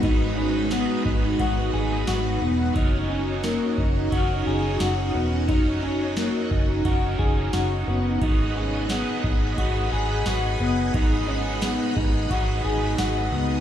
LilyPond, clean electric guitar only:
\new Staff \with { instrumentName = "Clean electric guitar" } { \time 4/4 \key gis \minor \tempo 4 = 88 dis'8 cis'8 b8 dis'8 fis'8 gis'8 fis'8 b8 | dis'8 cis'8 ais8 dis'8 fis'8 gis'8 fis'8 b8 | dis'8 cis'8 ais8 dis'8 fis'8 gis'8 fis'8 b8 | dis'8 cis'8 b8 dis'8 fis'8 gis'8 fis'8 b8 |
dis'8 cis'8 b8 dis'8 fis'8 gis'8 fis'8 b8 | }